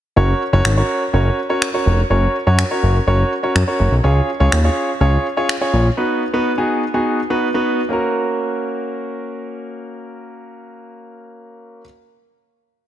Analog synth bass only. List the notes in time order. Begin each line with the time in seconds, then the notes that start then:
0.16 F#1
0.53 F#1
0.65 G#1
1.13 F#1
1.86 F1
2.10 F#1
2.47 F#2
2.83 F#1
3.07 F#1
3.55 F#2
3.80 F#1
3.92 B1
4.04 C#2
4.40 C#2
4.53 D#2
5.01 C#2
5.73 A#1